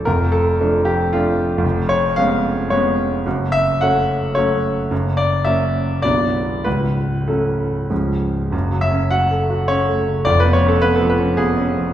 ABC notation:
X:1
M:3/4
L:1/16
Q:1/4=106
K:Dm
V:1 name="Grand piano"
B2 A4 G2 F4 | [K:F#m] z2 c2 ^e4 c4 | z2 e2 f4 c4 | z2 d2 e4 d4 |
B4 A4 z4 | z2 e2 f4 c4 | d B c A B A B2 G4 |]
V:2 name="Grand piano" clef=bass
[F,,,F,,]4 [F,A,D]4 [F,A,D]4 | [K:F#m] [^E,,,^E,,]4 [G,B,C]4 [G,B,C]4 | [F,,,F,,]4 [F,A,C]4 [F,A,C]4 | [F,,,F,,]4 [F,^A,C]4 [B,,,,B,,,F,B,D]4 |
[C,,,C,,]4 [F,A,C]4 [C,,,C,,^E,G,C]4 | (3[F,,,F,,]2 F,2 C2 (3F2 A2 F2 (3C2 A,2 C,2 | (3[^E,,,^E,,]2 B,2 C2 (3B,2 ^E,2 C2 (3B,2 C2 E,2 |]